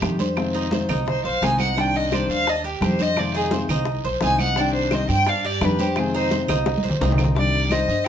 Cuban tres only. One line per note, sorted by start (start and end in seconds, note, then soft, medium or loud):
0.00 0.18 G4 medium
0.20 0.53 C5 medium
0.54 0.71 D#4 medium
0.72 0.89 C5 medium
0.89 1.23 D#4 medium
1.25 1.42 C5 medium
1.43 1.76 D#4 medium
1.77 2.11 D4 medium
2.13 2.46 C5 medium
2.47 2.64 D4 medium
2.64 2.98 G4 medium
3.00 3.33 C5 medium
3.34 3.51 D#4 medium
3.52 3.69 C5 medium
3.70 4.03 D#4 medium
4.04 4.21 C5 medium
4.22 4.56 D#4 medium
4.57 4.91 D4 medium
4.92 5.26 C5 medium
5.27 5.44 D4 medium
5.45 5.78 G4 medium
5.79 6.13 C5 medium
6.15 6.31 D#4 medium
6.32 6.49 C5 medium
6.48 6.83 D#4 medium
6.84 7.01 C5 medium
7.01 7.35 D#4 medium
7.71 8.05 C5 medium